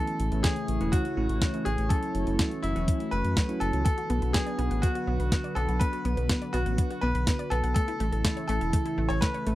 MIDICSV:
0, 0, Header, 1, 7, 480
1, 0, Start_track
1, 0, Tempo, 487805
1, 1874, Time_signature, 4, 2, 24, 8
1, 9397, End_track
2, 0, Start_track
2, 0, Title_t, "Grand piano"
2, 0, Program_c, 0, 0
2, 0, Note_on_c, 0, 69, 93
2, 423, Note_on_c, 0, 68, 91
2, 444, Note_off_c, 0, 69, 0
2, 904, Note_on_c, 0, 66, 97
2, 923, Note_off_c, 0, 68, 0
2, 1625, Note_on_c, 0, 68, 93
2, 1651, Note_off_c, 0, 66, 0
2, 1862, Note_on_c, 0, 69, 96
2, 1877, Note_off_c, 0, 68, 0
2, 2549, Note_off_c, 0, 69, 0
2, 2584, Note_on_c, 0, 64, 93
2, 3064, Note_on_c, 0, 71, 100
2, 3083, Note_off_c, 0, 64, 0
2, 3544, Note_on_c, 0, 69, 98
2, 3563, Note_off_c, 0, 71, 0
2, 3770, Note_off_c, 0, 69, 0
2, 3785, Note_on_c, 0, 69, 99
2, 4264, Note_on_c, 0, 68, 99
2, 4284, Note_off_c, 0, 69, 0
2, 4742, Note_on_c, 0, 66, 98
2, 4764, Note_off_c, 0, 68, 0
2, 5463, Note_on_c, 0, 69, 96
2, 5490, Note_off_c, 0, 66, 0
2, 5702, Note_on_c, 0, 71, 99
2, 5716, Note_off_c, 0, 69, 0
2, 6423, Note_on_c, 0, 66, 97
2, 6450, Note_off_c, 0, 71, 0
2, 6902, Note_on_c, 0, 71, 108
2, 6923, Note_off_c, 0, 66, 0
2, 7382, Note_on_c, 0, 69, 99
2, 7403, Note_off_c, 0, 71, 0
2, 7605, Note_off_c, 0, 69, 0
2, 7620, Note_on_c, 0, 69, 106
2, 8325, Note_off_c, 0, 69, 0
2, 8340, Note_on_c, 0, 69, 102
2, 8940, Note_on_c, 0, 73, 100
2, 8965, Note_off_c, 0, 69, 0
2, 9061, Note_on_c, 0, 71, 101
2, 9071, Note_off_c, 0, 73, 0
2, 9397, Note_off_c, 0, 71, 0
2, 9397, End_track
3, 0, Start_track
3, 0, Title_t, "Synth arpeggio sound"
3, 0, Program_c, 1, 84
3, 3793, Note_on_c, 1, 59, 78
3, 3864, Note_off_c, 1, 59, 0
3, 3913, Note_on_c, 1, 66, 74
3, 4020, Note_off_c, 1, 66, 0
3, 4033, Note_on_c, 1, 59, 101
3, 4104, Note_off_c, 1, 59, 0
3, 4154, Note_on_c, 1, 71, 74
3, 4225, Note_off_c, 1, 71, 0
3, 4273, Note_on_c, 1, 59, 85
3, 4344, Note_off_c, 1, 59, 0
3, 4393, Note_on_c, 1, 74, 77
3, 4500, Note_off_c, 1, 74, 0
3, 4511, Note_on_c, 1, 59, 98
3, 4584, Note_off_c, 1, 59, 0
3, 4632, Note_on_c, 1, 78, 70
3, 4740, Note_off_c, 1, 78, 0
3, 4753, Note_on_c, 1, 59, 80
3, 4824, Note_off_c, 1, 59, 0
3, 4873, Note_on_c, 1, 66, 73
3, 4980, Note_off_c, 1, 66, 0
3, 4992, Note_on_c, 1, 59, 103
3, 5064, Note_off_c, 1, 59, 0
3, 5113, Note_on_c, 1, 71, 78
3, 5184, Note_off_c, 1, 71, 0
3, 5233, Note_on_c, 1, 59, 82
3, 5305, Note_off_c, 1, 59, 0
3, 5353, Note_on_c, 1, 74, 78
3, 5460, Note_off_c, 1, 74, 0
3, 5472, Note_on_c, 1, 59, 106
3, 5544, Note_off_c, 1, 59, 0
3, 5593, Note_on_c, 1, 78, 77
3, 5700, Note_off_c, 1, 78, 0
3, 5714, Note_on_c, 1, 59, 79
3, 5785, Note_off_c, 1, 59, 0
3, 5834, Note_on_c, 1, 66, 79
3, 5940, Note_off_c, 1, 66, 0
3, 5954, Note_on_c, 1, 59, 105
3, 6025, Note_off_c, 1, 59, 0
3, 6073, Note_on_c, 1, 71, 77
3, 6144, Note_off_c, 1, 71, 0
3, 6193, Note_on_c, 1, 59, 82
3, 6265, Note_off_c, 1, 59, 0
3, 6314, Note_on_c, 1, 74, 73
3, 6420, Note_off_c, 1, 74, 0
3, 6434, Note_on_c, 1, 59, 106
3, 6505, Note_off_c, 1, 59, 0
3, 6554, Note_on_c, 1, 78, 73
3, 6660, Note_off_c, 1, 78, 0
3, 6676, Note_on_c, 1, 59, 78
3, 6746, Note_off_c, 1, 59, 0
3, 6795, Note_on_c, 1, 66, 78
3, 6901, Note_off_c, 1, 66, 0
3, 6916, Note_on_c, 1, 59, 102
3, 6986, Note_off_c, 1, 59, 0
3, 7034, Note_on_c, 1, 71, 79
3, 7105, Note_off_c, 1, 71, 0
3, 7154, Note_on_c, 1, 59, 82
3, 7225, Note_off_c, 1, 59, 0
3, 7273, Note_on_c, 1, 74, 80
3, 7380, Note_off_c, 1, 74, 0
3, 7393, Note_on_c, 1, 59, 106
3, 7465, Note_off_c, 1, 59, 0
3, 7513, Note_on_c, 1, 78, 77
3, 7620, Note_off_c, 1, 78, 0
3, 7633, Note_on_c, 1, 57, 80
3, 7705, Note_off_c, 1, 57, 0
3, 7753, Note_on_c, 1, 64, 78
3, 7860, Note_off_c, 1, 64, 0
3, 7873, Note_on_c, 1, 57, 101
3, 7944, Note_off_c, 1, 57, 0
3, 7994, Note_on_c, 1, 69, 75
3, 8065, Note_off_c, 1, 69, 0
3, 8112, Note_on_c, 1, 57, 83
3, 8184, Note_off_c, 1, 57, 0
3, 8233, Note_on_c, 1, 73, 74
3, 8340, Note_off_c, 1, 73, 0
3, 8352, Note_on_c, 1, 57, 108
3, 8424, Note_off_c, 1, 57, 0
3, 8473, Note_on_c, 1, 76, 76
3, 8580, Note_off_c, 1, 76, 0
3, 8593, Note_on_c, 1, 57, 82
3, 8664, Note_off_c, 1, 57, 0
3, 8714, Note_on_c, 1, 64, 78
3, 8820, Note_off_c, 1, 64, 0
3, 8834, Note_on_c, 1, 57, 100
3, 8905, Note_off_c, 1, 57, 0
3, 8954, Note_on_c, 1, 69, 80
3, 9025, Note_off_c, 1, 69, 0
3, 9074, Note_on_c, 1, 57, 84
3, 9145, Note_off_c, 1, 57, 0
3, 9194, Note_on_c, 1, 73, 78
3, 9301, Note_off_c, 1, 73, 0
3, 9314, Note_on_c, 1, 57, 104
3, 9385, Note_off_c, 1, 57, 0
3, 9397, End_track
4, 0, Start_track
4, 0, Title_t, "Tine electric piano"
4, 0, Program_c, 2, 4
4, 0, Note_on_c, 2, 52, 88
4, 0, Note_on_c, 2, 57, 80
4, 0, Note_on_c, 2, 61, 81
4, 0, Note_on_c, 2, 64, 95
4, 286, Note_off_c, 2, 52, 0
4, 286, Note_off_c, 2, 57, 0
4, 286, Note_off_c, 2, 61, 0
4, 286, Note_off_c, 2, 64, 0
4, 315, Note_on_c, 2, 52, 76
4, 315, Note_on_c, 2, 57, 68
4, 315, Note_on_c, 2, 64, 80
4, 316, Note_on_c, 2, 61, 64
4, 539, Note_off_c, 2, 52, 0
4, 539, Note_off_c, 2, 57, 0
4, 539, Note_off_c, 2, 64, 0
4, 540, Note_off_c, 2, 61, 0
4, 794, Note_on_c, 2, 64, 99
4, 795, Note_on_c, 2, 52, 91
4, 795, Note_on_c, 2, 57, 81
4, 795, Note_on_c, 2, 61, 82
4, 1019, Note_off_c, 2, 52, 0
4, 1019, Note_off_c, 2, 57, 0
4, 1019, Note_off_c, 2, 61, 0
4, 1019, Note_off_c, 2, 64, 0
4, 1155, Note_on_c, 2, 61, 84
4, 1155, Note_on_c, 2, 64, 100
4, 1156, Note_on_c, 2, 52, 89
4, 1156, Note_on_c, 2, 57, 82
4, 1486, Note_off_c, 2, 52, 0
4, 1486, Note_off_c, 2, 57, 0
4, 1486, Note_off_c, 2, 61, 0
4, 1486, Note_off_c, 2, 64, 0
4, 1515, Note_on_c, 2, 57, 68
4, 1516, Note_on_c, 2, 52, 75
4, 1516, Note_on_c, 2, 61, 72
4, 1516, Note_on_c, 2, 64, 83
4, 1655, Note_off_c, 2, 52, 0
4, 1655, Note_off_c, 2, 57, 0
4, 1655, Note_off_c, 2, 61, 0
4, 1656, Note_off_c, 2, 64, 0
4, 1876, Note_on_c, 2, 57, 78
4, 1876, Note_on_c, 2, 61, 81
4, 1877, Note_on_c, 2, 54, 85
4, 1877, Note_on_c, 2, 64, 96
4, 2206, Note_off_c, 2, 57, 0
4, 2206, Note_off_c, 2, 61, 0
4, 2207, Note_off_c, 2, 54, 0
4, 2207, Note_off_c, 2, 64, 0
4, 2235, Note_on_c, 2, 61, 65
4, 2235, Note_on_c, 2, 64, 81
4, 2236, Note_on_c, 2, 54, 73
4, 2236, Note_on_c, 2, 57, 68
4, 2459, Note_off_c, 2, 61, 0
4, 2460, Note_off_c, 2, 54, 0
4, 2460, Note_off_c, 2, 57, 0
4, 2460, Note_off_c, 2, 64, 0
4, 2714, Note_on_c, 2, 54, 88
4, 2714, Note_on_c, 2, 57, 83
4, 2714, Note_on_c, 2, 64, 95
4, 2715, Note_on_c, 2, 61, 83
4, 2939, Note_off_c, 2, 54, 0
4, 2939, Note_off_c, 2, 57, 0
4, 2939, Note_off_c, 2, 61, 0
4, 2939, Note_off_c, 2, 64, 0
4, 3315, Note_on_c, 2, 57, 70
4, 3315, Note_on_c, 2, 61, 72
4, 3315, Note_on_c, 2, 66, 87
4, 3316, Note_on_c, 2, 54, 78
4, 3406, Note_off_c, 2, 54, 0
4, 3406, Note_off_c, 2, 57, 0
4, 3406, Note_off_c, 2, 61, 0
4, 3406, Note_off_c, 2, 66, 0
4, 3434, Note_on_c, 2, 54, 76
4, 3434, Note_on_c, 2, 61, 70
4, 3434, Note_on_c, 2, 64, 84
4, 3435, Note_on_c, 2, 57, 70
4, 3638, Note_off_c, 2, 54, 0
4, 3638, Note_off_c, 2, 61, 0
4, 3638, Note_off_c, 2, 64, 0
4, 3639, Note_off_c, 2, 57, 0
4, 3674, Note_on_c, 2, 64, 81
4, 3675, Note_on_c, 2, 54, 74
4, 3675, Note_on_c, 2, 57, 67
4, 3675, Note_on_c, 2, 61, 67
4, 3765, Note_off_c, 2, 57, 0
4, 3765, Note_off_c, 2, 64, 0
4, 3766, Note_off_c, 2, 54, 0
4, 3766, Note_off_c, 2, 61, 0
4, 9397, End_track
5, 0, Start_track
5, 0, Title_t, "Analog synth pad"
5, 0, Program_c, 3, 89
5, 0, Note_on_c, 3, 49, 82
5, 0, Note_on_c, 3, 52, 78
5, 0, Note_on_c, 3, 57, 75
5, 0, Note_on_c, 3, 64, 79
5, 0, Note_on_c, 3, 73, 92
5, 1855, Note_off_c, 3, 49, 0
5, 1855, Note_off_c, 3, 57, 0
5, 1855, Note_off_c, 3, 64, 0
5, 1874, Note_on_c, 3, 66, 74
5, 1875, Note_on_c, 3, 57, 74
5, 1875, Note_on_c, 3, 61, 74
5, 3755, Note_off_c, 3, 52, 0
5, 3755, Note_off_c, 3, 73, 0
5, 3775, Note_off_c, 3, 61, 0
5, 3776, Note_off_c, 3, 57, 0
5, 3795, Note_on_c, 3, 50, 83
5, 3795, Note_on_c, 3, 54, 75
5, 3796, Note_on_c, 3, 59, 77
5, 3796, Note_on_c, 3, 71, 93
5, 7595, Note_off_c, 3, 66, 0
5, 7596, Note_off_c, 3, 50, 0
5, 7596, Note_off_c, 3, 54, 0
5, 7596, Note_off_c, 3, 59, 0
5, 7596, Note_off_c, 3, 71, 0
5, 7633, Note_on_c, 3, 49, 85
5, 7633, Note_on_c, 3, 57, 76
5, 7634, Note_on_c, 3, 52, 75
5, 7635, Note_on_c, 3, 64, 80
5, 7635, Note_on_c, 3, 69, 93
5, 9397, Note_off_c, 3, 49, 0
5, 9397, Note_off_c, 3, 52, 0
5, 9397, Note_off_c, 3, 57, 0
5, 9397, Note_off_c, 3, 64, 0
5, 9397, Note_off_c, 3, 69, 0
5, 9397, End_track
6, 0, Start_track
6, 0, Title_t, "Analog synth bass"
6, 0, Program_c, 4, 38
6, 195, Note_on_c, 4, 33, 94
6, 302, Note_off_c, 4, 33, 0
6, 312, Note_on_c, 4, 33, 79
6, 421, Note_off_c, 4, 33, 0
6, 673, Note_on_c, 4, 33, 89
6, 781, Note_off_c, 4, 33, 0
6, 793, Note_on_c, 4, 28, 85
6, 901, Note_off_c, 4, 28, 0
6, 1152, Note_on_c, 4, 33, 94
6, 1261, Note_off_c, 4, 33, 0
6, 1273, Note_on_c, 4, 33, 83
6, 1381, Note_off_c, 4, 33, 0
6, 1633, Note_on_c, 4, 33, 91
6, 1741, Note_off_c, 4, 33, 0
6, 1754, Note_on_c, 4, 33, 81
6, 1862, Note_off_c, 4, 33, 0
6, 2113, Note_on_c, 4, 30, 96
6, 2221, Note_off_c, 4, 30, 0
6, 2232, Note_on_c, 4, 30, 81
6, 2341, Note_off_c, 4, 30, 0
6, 2592, Note_on_c, 4, 30, 93
6, 2701, Note_off_c, 4, 30, 0
6, 2713, Note_on_c, 4, 28, 83
6, 2821, Note_off_c, 4, 28, 0
6, 3073, Note_on_c, 4, 30, 93
6, 3181, Note_off_c, 4, 30, 0
6, 3192, Note_on_c, 4, 42, 83
6, 3301, Note_off_c, 4, 42, 0
6, 3553, Note_on_c, 4, 30, 89
6, 3661, Note_off_c, 4, 30, 0
6, 3673, Note_on_c, 4, 37, 79
6, 3781, Note_off_c, 4, 37, 0
6, 4033, Note_on_c, 4, 35, 92
6, 4141, Note_off_c, 4, 35, 0
6, 4154, Note_on_c, 4, 35, 81
6, 4262, Note_off_c, 4, 35, 0
6, 4513, Note_on_c, 4, 35, 91
6, 4621, Note_off_c, 4, 35, 0
6, 4633, Note_on_c, 4, 33, 84
6, 4741, Note_off_c, 4, 33, 0
6, 4992, Note_on_c, 4, 35, 92
6, 5101, Note_off_c, 4, 35, 0
6, 5114, Note_on_c, 4, 35, 82
6, 5222, Note_off_c, 4, 35, 0
6, 5474, Note_on_c, 4, 35, 93
6, 5582, Note_off_c, 4, 35, 0
6, 5594, Note_on_c, 4, 35, 80
6, 5702, Note_off_c, 4, 35, 0
6, 5953, Note_on_c, 4, 35, 97
6, 6061, Note_off_c, 4, 35, 0
6, 6074, Note_on_c, 4, 35, 82
6, 6182, Note_off_c, 4, 35, 0
6, 6434, Note_on_c, 4, 35, 93
6, 6542, Note_off_c, 4, 35, 0
6, 6554, Note_on_c, 4, 33, 84
6, 6662, Note_off_c, 4, 33, 0
6, 6913, Note_on_c, 4, 35, 92
6, 7021, Note_off_c, 4, 35, 0
6, 7033, Note_on_c, 4, 35, 82
6, 7141, Note_off_c, 4, 35, 0
6, 7393, Note_on_c, 4, 35, 98
6, 7502, Note_off_c, 4, 35, 0
6, 7515, Note_on_c, 4, 35, 79
6, 7622, Note_off_c, 4, 35, 0
6, 7874, Note_on_c, 4, 33, 95
6, 7982, Note_off_c, 4, 33, 0
6, 7993, Note_on_c, 4, 33, 77
6, 8101, Note_off_c, 4, 33, 0
6, 8353, Note_on_c, 4, 33, 95
6, 8461, Note_off_c, 4, 33, 0
6, 8473, Note_on_c, 4, 28, 81
6, 8581, Note_off_c, 4, 28, 0
6, 8833, Note_on_c, 4, 33, 88
6, 8942, Note_off_c, 4, 33, 0
6, 8954, Note_on_c, 4, 33, 84
6, 9062, Note_off_c, 4, 33, 0
6, 9315, Note_on_c, 4, 33, 95
6, 9397, Note_off_c, 4, 33, 0
6, 9397, End_track
7, 0, Start_track
7, 0, Title_t, "Drums"
7, 73, Note_on_c, 9, 42, 38
7, 172, Note_off_c, 9, 42, 0
7, 193, Note_on_c, 9, 42, 64
7, 291, Note_off_c, 9, 42, 0
7, 313, Note_on_c, 9, 42, 37
7, 412, Note_off_c, 9, 42, 0
7, 432, Note_on_c, 9, 38, 120
7, 432, Note_on_c, 9, 42, 91
7, 433, Note_on_c, 9, 36, 105
7, 531, Note_off_c, 9, 36, 0
7, 531, Note_off_c, 9, 38, 0
7, 531, Note_off_c, 9, 42, 0
7, 553, Note_on_c, 9, 42, 39
7, 651, Note_off_c, 9, 42, 0
7, 673, Note_on_c, 9, 42, 64
7, 771, Note_off_c, 9, 42, 0
7, 794, Note_on_c, 9, 42, 37
7, 892, Note_off_c, 9, 42, 0
7, 913, Note_on_c, 9, 36, 115
7, 913, Note_on_c, 9, 42, 89
7, 1011, Note_off_c, 9, 36, 0
7, 1011, Note_off_c, 9, 42, 0
7, 1033, Note_on_c, 9, 42, 39
7, 1132, Note_off_c, 9, 42, 0
7, 1273, Note_on_c, 9, 42, 40
7, 1372, Note_off_c, 9, 42, 0
7, 1393, Note_on_c, 9, 36, 107
7, 1393, Note_on_c, 9, 38, 122
7, 1393, Note_on_c, 9, 42, 91
7, 1491, Note_off_c, 9, 36, 0
7, 1492, Note_off_c, 9, 38, 0
7, 1492, Note_off_c, 9, 42, 0
7, 1513, Note_on_c, 9, 42, 38
7, 1612, Note_off_c, 9, 42, 0
7, 1633, Note_on_c, 9, 42, 61
7, 1731, Note_off_c, 9, 42, 0
7, 1753, Note_on_c, 9, 42, 36
7, 1851, Note_off_c, 9, 42, 0
7, 1872, Note_on_c, 9, 36, 119
7, 1874, Note_on_c, 9, 42, 83
7, 1971, Note_off_c, 9, 36, 0
7, 1972, Note_off_c, 9, 42, 0
7, 1993, Note_on_c, 9, 42, 37
7, 2092, Note_off_c, 9, 42, 0
7, 2113, Note_on_c, 9, 42, 60
7, 2212, Note_off_c, 9, 42, 0
7, 2233, Note_on_c, 9, 42, 37
7, 2331, Note_off_c, 9, 42, 0
7, 2353, Note_on_c, 9, 36, 102
7, 2353, Note_on_c, 9, 38, 115
7, 2353, Note_on_c, 9, 42, 88
7, 2451, Note_off_c, 9, 36, 0
7, 2452, Note_off_c, 9, 38, 0
7, 2452, Note_off_c, 9, 42, 0
7, 2474, Note_on_c, 9, 42, 37
7, 2572, Note_off_c, 9, 42, 0
7, 2594, Note_on_c, 9, 42, 59
7, 2693, Note_off_c, 9, 42, 0
7, 2715, Note_on_c, 9, 42, 37
7, 2814, Note_off_c, 9, 42, 0
7, 2833, Note_on_c, 9, 36, 111
7, 2834, Note_on_c, 9, 42, 87
7, 2931, Note_off_c, 9, 36, 0
7, 2933, Note_off_c, 9, 42, 0
7, 2955, Note_on_c, 9, 42, 38
7, 3053, Note_off_c, 9, 42, 0
7, 3074, Note_on_c, 9, 42, 35
7, 3172, Note_off_c, 9, 42, 0
7, 3194, Note_on_c, 9, 42, 37
7, 3292, Note_off_c, 9, 42, 0
7, 3313, Note_on_c, 9, 36, 107
7, 3313, Note_on_c, 9, 38, 119
7, 3313, Note_on_c, 9, 42, 86
7, 3412, Note_off_c, 9, 36, 0
7, 3412, Note_off_c, 9, 38, 0
7, 3412, Note_off_c, 9, 42, 0
7, 3434, Note_on_c, 9, 42, 36
7, 3532, Note_off_c, 9, 42, 0
7, 3554, Note_on_c, 9, 42, 59
7, 3652, Note_off_c, 9, 42, 0
7, 3674, Note_on_c, 9, 42, 37
7, 3772, Note_off_c, 9, 42, 0
7, 3794, Note_on_c, 9, 36, 117
7, 3794, Note_on_c, 9, 42, 83
7, 3892, Note_off_c, 9, 36, 0
7, 3893, Note_off_c, 9, 42, 0
7, 3914, Note_on_c, 9, 42, 38
7, 4013, Note_off_c, 9, 42, 0
7, 4034, Note_on_c, 9, 42, 62
7, 4132, Note_off_c, 9, 42, 0
7, 4154, Note_on_c, 9, 42, 36
7, 4252, Note_off_c, 9, 42, 0
7, 4274, Note_on_c, 9, 36, 94
7, 4274, Note_on_c, 9, 38, 120
7, 4274, Note_on_c, 9, 42, 84
7, 4372, Note_off_c, 9, 36, 0
7, 4372, Note_off_c, 9, 38, 0
7, 4372, Note_off_c, 9, 42, 0
7, 4393, Note_on_c, 9, 42, 36
7, 4492, Note_off_c, 9, 42, 0
7, 4514, Note_on_c, 9, 42, 64
7, 4612, Note_off_c, 9, 42, 0
7, 4634, Note_on_c, 9, 42, 36
7, 4733, Note_off_c, 9, 42, 0
7, 4753, Note_on_c, 9, 36, 107
7, 4755, Note_on_c, 9, 42, 84
7, 4852, Note_off_c, 9, 36, 0
7, 4853, Note_off_c, 9, 42, 0
7, 4874, Note_on_c, 9, 42, 39
7, 4973, Note_off_c, 9, 42, 0
7, 5115, Note_on_c, 9, 42, 37
7, 5213, Note_off_c, 9, 42, 0
7, 5233, Note_on_c, 9, 36, 109
7, 5235, Note_on_c, 9, 38, 118
7, 5235, Note_on_c, 9, 42, 88
7, 5332, Note_off_c, 9, 36, 0
7, 5333, Note_off_c, 9, 38, 0
7, 5333, Note_off_c, 9, 42, 0
7, 5355, Note_on_c, 9, 42, 36
7, 5453, Note_off_c, 9, 42, 0
7, 5475, Note_on_c, 9, 42, 59
7, 5573, Note_off_c, 9, 42, 0
7, 5595, Note_on_c, 9, 42, 36
7, 5694, Note_off_c, 9, 42, 0
7, 5714, Note_on_c, 9, 36, 108
7, 5715, Note_on_c, 9, 42, 88
7, 5812, Note_off_c, 9, 36, 0
7, 5814, Note_off_c, 9, 42, 0
7, 5835, Note_on_c, 9, 42, 38
7, 5933, Note_off_c, 9, 42, 0
7, 5954, Note_on_c, 9, 42, 65
7, 6052, Note_off_c, 9, 42, 0
7, 6074, Note_on_c, 9, 42, 40
7, 6173, Note_off_c, 9, 42, 0
7, 6194, Note_on_c, 9, 36, 99
7, 6194, Note_on_c, 9, 38, 117
7, 6194, Note_on_c, 9, 42, 93
7, 6292, Note_off_c, 9, 36, 0
7, 6292, Note_off_c, 9, 38, 0
7, 6292, Note_off_c, 9, 42, 0
7, 6314, Note_on_c, 9, 42, 38
7, 6413, Note_off_c, 9, 42, 0
7, 6434, Note_on_c, 9, 42, 66
7, 6533, Note_off_c, 9, 42, 0
7, 6554, Note_on_c, 9, 42, 38
7, 6652, Note_off_c, 9, 42, 0
7, 6674, Note_on_c, 9, 36, 108
7, 6674, Note_on_c, 9, 42, 86
7, 6772, Note_off_c, 9, 36, 0
7, 6772, Note_off_c, 9, 42, 0
7, 6795, Note_on_c, 9, 42, 39
7, 6893, Note_off_c, 9, 42, 0
7, 7035, Note_on_c, 9, 42, 39
7, 7133, Note_off_c, 9, 42, 0
7, 7154, Note_on_c, 9, 36, 104
7, 7154, Note_on_c, 9, 38, 112
7, 7154, Note_on_c, 9, 42, 90
7, 7252, Note_off_c, 9, 36, 0
7, 7252, Note_off_c, 9, 38, 0
7, 7252, Note_off_c, 9, 42, 0
7, 7274, Note_on_c, 9, 42, 38
7, 7373, Note_off_c, 9, 42, 0
7, 7394, Note_on_c, 9, 42, 62
7, 7492, Note_off_c, 9, 42, 0
7, 7515, Note_on_c, 9, 42, 38
7, 7613, Note_off_c, 9, 42, 0
7, 7633, Note_on_c, 9, 36, 107
7, 7634, Note_on_c, 9, 42, 93
7, 7732, Note_off_c, 9, 36, 0
7, 7732, Note_off_c, 9, 42, 0
7, 7754, Note_on_c, 9, 42, 39
7, 7853, Note_off_c, 9, 42, 0
7, 7875, Note_on_c, 9, 42, 67
7, 7973, Note_off_c, 9, 42, 0
7, 7995, Note_on_c, 9, 42, 41
7, 8094, Note_off_c, 9, 42, 0
7, 8113, Note_on_c, 9, 36, 91
7, 8114, Note_on_c, 9, 38, 113
7, 8114, Note_on_c, 9, 42, 97
7, 8212, Note_off_c, 9, 36, 0
7, 8213, Note_off_c, 9, 38, 0
7, 8213, Note_off_c, 9, 42, 0
7, 8235, Note_on_c, 9, 42, 40
7, 8333, Note_off_c, 9, 42, 0
7, 8354, Note_on_c, 9, 42, 68
7, 8453, Note_off_c, 9, 42, 0
7, 8474, Note_on_c, 9, 42, 39
7, 8573, Note_off_c, 9, 42, 0
7, 8593, Note_on_c, 9, 36, 112
7, 8593, Note_on_c, 9, 42, 94
7, 8692, Note_off_c, 9, 36, 0
7, 8692, Note_off_c, 9, 42, 0
7, 8714, Note_on_c, 9, 42, 41
7, 8812, Note_off_c, 9, 42, 0
7, 8955, Note_on_c, 9, 42, 41
7, 9053, Note_off_c, 9, 42, 0
7, 9073, Note_on_c, 9, 36, 101
7, 9075, Note_on_c, 9, 38, 110
7, 9075, Note_on_c, 9, 42, 93
7, 9172, Note_off_c, 9, 36, 0
7, 9173, Note_off_c, 9, 38, 0
7, 9173, Note_off_c, 9, 42, 0
7, 9195, Note_on_c, 9, 42, 39
7, 9293, Note_off_c, 9, 42, 0
7, 9314, Note_on_c, 9, 42, 65
7, 9397, Note_off_c, 9, 42, 0
7, 9397, End_track
0, 0, End_of_file